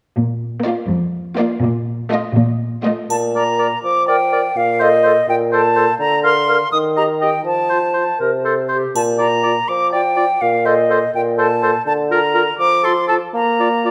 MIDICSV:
0, 0, Header, 1, 10, 480
1, 0, Start_track
1, 0, Key_signature, -2, "major"
1, 0, Tempo, 485830
1, 167, Time_signature, 6, 3, 24, 8
1, 7365, Tempo, 490597
1, 13679, End_track
2, 0, Start_track
2, 0, Title_t, "Flute"
2, 0, Program_c, 0, 73
2, 3065, Note_on_c, 0, 81, 59
2, 3124, Note_off_c, 0, 81, 0
2, 3318, Note_on_c, 0, 82, 47
2, 3779, Note_off_c, 0, 82, 0
2, 3785, Note_on_c, 0, 86, 55
2, 4021, Note_off_c, 0, 86, 0
2, 4035, Note_on_c, 0, 79, 51
2, 4513, Note_on_c, 0, 77, 53
2, 4528, Note_off_c, 0, 79, 0
2, 4759, Note_on_c, 0, 75, 58
2, 4774, Note_off_c, 0, 77, 0
2, 5223, Note_off_c, 0, 75, 0
2, 5229, Note_on_c, 0, 79, 67
2, 5288, Note_off_c, 0, 79, 0
2, 5466, Note_on_c, 0, 81, 58
2, 5914, Note_off_c, 0, 81, 0
2, 5920, Note_on_c, 0, 82, 72
2, 6155, Note_off_c, 0, 82, 0
2, 6160, Note_on_c, 0, 84, 73
2, 6632, Note_off_c, 0, 84, 0
2, 6640, Note_on_c, 0, 87, 69
2, 6699, Note_off_c, 0, 87, 0
2, 6887, Note_on_c, 0, 82, 59
2, 6946, Note_off_c, 0, 82, 0
2, 7117, Note_on_c, 0, 79, 53
2, 7358, Note_off_c, 0, 79, 0
2, 7371, Note_on_c, 0, 81, 55
2, 8081, Note_off_c, 0, 81, 0
2, 8834, Note_on_c, 0, 81, 58
2, 8893, Note_off_c, 0, 81, 0
2, 9064, Note_on_c, 0, 82, 52
2, 9546, Note_on_c, 0, 86, 60
2, 9561, Note_off_c, 0, 82, 0
2, 9778, Note_off_c, 0, 86, 0
2, 9784, Note_on_c, 0, 79, 53
2, 10261, Note_on_c, 0, 77, 50
2, 10276, Note_off_c, 0, 79, 0
2, 10498, Note_on_c, 0, 75, 52
2, 10512, Note_off_c, 0, 77, 0
2, 10968, Note_off_c, 0, 75, 0
2, 10980, Note_on_c, 0, 79, 66
2, 11039, Note_off_c, 0, 79, 0
2, 11204, Note_on_c, 0, 81, 52
2, 11664, Note_off_c, 0, 81, 0
2, 11684, Note_on_c, 0, 81, 78
2, 11743, Note_off_c, 0, 81, 0
2, 11919, Note_on_c, 0, 82, 61
2, 12377, Note_off_c, 0, 82, 0
2, 12383, Note_on_c, 0, 86, 78
2, 12641, Note_on_c, 0, 84, 62
2, 12655, Note_off_c, 0, 86, 0
2, 12868, Note_off_c, 0, 84, 0
2, 12874, Note_on_c, 0, 81, 58
2, 12933, Note_off_c, 0, 81, 0
2, 13125, Note_on_c, 0, 82, 58
2, 13679, Note_off_c, 0, 82, 0
2, 13679, End_track
3, 0, Start_track
3, 0, Title_t, "Violin section"
3, 0, Program_c, 1, 48
3, 651, Note_on_c, 1, 74, 42
3, 830, Note_off_c, 1, 74, 0
3, 1367, Note_on_c, 1, 74, 43
3, 1546, Note_off_c, 1, 74, 0
3, 2092, Note_on_c, 1, 75, 49
3, 2269, Note_off_c, 1, 75, 0
3, 2806, Note_on_c, 1, 75, 38
3, 2994, Note_off_c, 1, 75, 0
3, 13679, End_track
4, 0, Start_track
4, 0, Title_t, "Oboe"
4, 0, Program_c, 2, 68
4, 3315, Note_on_c, 2, 74, 37
4, 3399, Note_off_c, 2, 74, 0
4, 3546, Note_on_c, 2, 74, 38
4, 3632, Note_off_c, 2, 74, 0
4, 4029, Note_on_c, 2, 74, 36
4, 4115, Note_off_c, 2, 74, 0
4, 4277, Note_on_c, 2, 74, 40
4, 4361, Note_off_c, 2, 74, 0
4, 4739, Note_on_c, 2, 72, 42
4, 4826, Note_off_c, 2, 72, 0
4, 4971, Note_on_c, 2, 72, 38
4, 5060, Note_off_c, 2, 72, 0
4, 5456, Note_on_c, 2, 72, 44
4, 5542, Note_off_c, 2, 72, 0
4, 5687, Note_on_c, 2, 72, 41
4, 5774, Note_off_c, 2, 72, 0
4, 6163, Note_on_c, 2, 77, 45
4, 6250, Note_off_c, 2, 77, 0
4, 6409, Note_on_c, 2, 77, 42
4, 6495, Note_off_c, 2, 77, 0
4, 6880, Note_on_c, 2, 75, 39
4, 6967, Note_off_c, 2, 75, 0
4, 7126, Note_on_c, 2, 75, 36
4, 7213, Note_off_c, 2, 75, 0
4, 7601, Note_on_c, 2, 72, 38
4, 7690, Note_off_c, 2, 72, 0
4, 7837, Note_on_c, 2, 72, 35
4, 7928, Note_off_c, 2, 72, 0
4, 8337, Note_on_c, 2, 72, 33
4, 8425, Note_off_c, 2, 72, 0
4, 8570, Note_on_c, 2, 72, 35
4, 8660, Note_off_c, 2, 72, 0
4, 9057, Note_on_c, 2, 74, 38
4, 9145, Note_off_c, 2, 74, 0
4, 9304, Note_on_c, 2, 74, 38
4, 9389, Note_off_c, 2, 74, 0
4, 9782, Note_on_c, 2, 74, 35
4, 9867, Note_off_c, 2, 74, 0
4, 10016, Note_on_c, 2, 74, 39
4, 10102, Note_off_c, 2, 74, 0
4, 10497, Note_on_c, 2, 72, 38
4, 10581, Note_off_c, 2, 72, 0
4, 10741, Note_on_c, 2, 72, 41
4, 10823, Note_off_c, 2, 72, 0
4, 11211, Note_on_c, 2, 72, 40
4, 11294, Note_off_c, 2, 72, 0
4, 11449, Note_on_c, 2, 72, 44
4, 11531, Note_off_c, 2, 72, 0
4, 11925, Note_on_c, 2, 70, 46
4, 12007, Note_off_c, 2, 70, 0
4, 12152, Note_on_c, 2, 70, 48
4, 12237, Note_off_c, 2, 70, 0
4, 12630, Note_on_c, 2, 69, 42
4, 12717, Note_off_c, 2, 69, 0
4, 12865, Note_on_c, 2, 69, 41
4, 12954, Note_off_c, 2, 69, 0
4, 13378, Note_on_c, 2, 74, 35
4, 13463, Note_off_c, 2, 74, 0
4, 13627, Note_on_c, 2, 74, 34
4, 13679, Note_off_c, 2, 74, 0
4, 13679, End_track
5, 0, Start_track
5, 0, Title_t, "Clarinet"
5, 0, Program_c, 3, 71
5, 3299, Note_on_c, 3, 70, 34
5, 3386, Note_off_c, 3, 70, 0
5, 3540, Note_on_c, 3, 70, 35
5, 3628, Note_off_c, 3, 70, 0
5, 4033, Note_on_c, 3, 70, 37
5, 4118, Note_off_c, 3, 70, 0
5, 4264, Note_on_c, 3, 70, 38
5, 4351, Note_off_c, 3, 70, 0
5, 4762, Note_on_c, 3, 69, 39
5, 4844, Note_off_c, 3, 69, 0
5, 4995, Note_on_c, 3, 69, 41
5, 5078, Note_off_c, 3, 69, 0
5, 5464, Note_on_c, 3, 69, 45
5, 5548, Note_off_c, 3, 69, 0
5, 5695, Note_on_c, 3, 69, 42
5, 5780, Note_off_c, 3, 69, 0
5, 6166, Note_on_c, 3, 70, 39
5, 6253, Note_off_c, 3, 70, 0
5, 6410, Note_on_c, 3, 70, 40
5, 6496, Note_off_c, 3, 70, 0
5, 6894, Note_on_c, 3, 67, 39
5, 6978, Note_off_c, 3, 67, 0
5, 7142, Note_on_c, 3, 67, 37
5, 7225, Note_off_c, 3, 67, 0
5, 7614, Note_on_c, 3, 65, 36
5, 7700, Note_off_c, 3, 65, 0
5, 7852, Note_on_c, 3, 65, 33
5, 7939, Note_off_c, 3, 65, 0
5, 8092, Note_on_c, 3, 70, 50
5, 8202, Note_off_c, 3, 70, 0
5, 8335, Note_on_c, 3, 69, 38
5, 8444, Note_off_c, 3, 69, 0
5, 8590, Note_on_c, 3, 67, 35
5, 8822, Note_off_c, 3, 67, 0
5, 9063, Note_on_c, 3, 65, 35
5, 9149, Note_off_c, 3, 65, 0
5, 9310, Note_on_c, 3, 65, 35
5, 9394, Note_off_c, 3, 65, 0
5, 9797, Note_on_c, 3, 65, 36
5, 9878, Note_off_c, 3, 65, 0
5, 10014, Note_on_c, 3, 65, 37
5, 10101, Note_off_c, 3, 65, 0
5, 10496, Note_on_c, 3, 69, 35
5, 10581, Note_off_c, 3, 69, 0
5, 10725, Note_on_c, 3, 69, 38
5, 10811, Note_off_c, 3, 69, 0
5, 11206, Note_on_c, 3, 69, 46
5, 11289, Note_off_c, 3, 69, 0
5, 11445, Note_on_c, 3, 69, 40
5, 11528, Note_off_c, 3, 69, 0
5, 11915, Note_on_c, 3, 65, 41
5, 12000, Note_off_c, 3, 65, 0
5, 12145, Note_on_c, 3, 65, 43
5, 12232, Note_off_c, 3, 65, 0
5, 12647, Note_on_c, 3, 65, 43
5, 12730, Note_off_c, 3, 65, 0
5, 12891, Note_on_c, 3, 65, 40
5, 12975, Note_off_c, 3, 65, 0
5, 13373, Note_on_c, 3, 65, 36
5, 13459, Note_off_c, 3, 65, 0
5, 13621, Note_on_c, 3, 65, 37
5, 13679, Note_off_c, 3, 65, 0
5, 13679, End_track
6, 0, Start_track
6, 0, Title_t, "Violin section"
6, 0, Program_c, 4, 48
6, 646, Note_on_c, 4, 65, 41
6, 827, Note_off_c, 4, 65, 0
6, 1358, Note_on_c, 4, 65, 46
6, 1541, Note_off_c, 4, 65, 0
6, 2094, Note_on_c, 4, 65, 48
6, 2270, Note_off_c, 4, 65, 0
6, 2808, Note_on_c, 4, 65, 37
6, 2995, Note_off_c, 4, 65, 0
6, 13679, End_track
7, 0, Start_track
7, 0, Title_t, "Viola section"
7, 0, Program_c, 5, 48
7, 642, Note_on_c, 5, 58, 39
7, 826, Note_off_c, 5, 58, 0
7, 1355, Note_on_c, 5, 58, 49
7, 1539, Note_off_c, 5, 58, 0
7, 2081, Note_on_c, 5, 57, 46
7, 2263, Note_off_c, 5, 57, 0
7, 2815, Note_on_c, 5, 57, 40
7, 2998, Note_off_c, 5, 57, 0
7, 13679, End_track
8, 0, Start_track
8, 0, Title_t, "Bassoon"
8, 0, Program_c, 6, 70
8, 3061, Note_on_c, 6, 46, 46
8, 3664, Note_off_c, 6, 46, 0
8, 3793, Note_on_c, 6, 53, 47
8, 4390, Note_off_c, 6, 53, 0
8, 4502, Note_on_c, 6, 46, 50
8, 5102, Note_off_c, 6, 46, 0
8, 5221, Note_on_c, 6, 46, 54
8, 5813, Note_off_c, 6, 46, 0
8, 5921, Note_on_c, 6, 50, 56
8, 6521, Note_off_c, 6, 50, 0
8, 6649, Note_on_c, 6, 51, 55
8, 7247, Note_off_c, 6, 51, 0
8, 7359, Note_on_c, 6, 53, 50
8, 7968, Note_off_c, 6, 53, 0
8, 8104, Note_on_c, 6, 48, 43
8, 8706, Note_off_c, 6, 48, 0
8, 8833, Note_on_c, 6, 46, 51
8, 9427, Note_off_c, 6, 46, 0
8, 9556, Note_on_c, 6, 53, 50
8, 10143, Note_off_c, 6, 53, 0
8, 10267, Note_on_c, 6, 46, 51
8, 10853, Note_off_c, 6, 46, 0
8, 10981, Note_on_c, 6, 46, 54
8, 11562, Note_off_c, 6, 46, 0
8, 11677, Note_on_c, 6, 50, 60
8, 12269, Note_off_c, 6, 50, 0
8, 12394, Note_on_c, 6, 53, 56
8, 12997, Note_off_c, 6, 53, 0
8, 13120, Note_on_c, 6, 58, 48
8, 13679, Note_off_c, 6, 58, 0
8, 13679, End_track
9, 0, Start_track
9, 0, Title_t, "Cello section"
9, 0, Program_c, 7, 48
9, 160, Note_on_c, 7, 46, 44
9, 742, Note_off_c, 7, 46, 0
9, 887, Note_on_c, 7, 41, 48
9, 1458, Note_off_c, 7, 41, 0
9, 1603, Note_on_c, 7, 46, 58
9, 2178, Note_off_c, 7, 46, 0
9, 2327, Note_on_c, 7, 46, 55
9, 2912, Note_off_c, 7, 46, 0
9, 13679, End_track
10, 0, Start_track
10, 0, Title_t, "Drums"
10, 3065, Note_on_c, 9, 81, 31
10, 3163, Note_off_c, 9, 81, 0
10, 8834, Note_on_c, 9, 81, 30
10, 8931, Note_off_c, 9, 81, 0
10, 13679, End_track
0, 0, End_of_file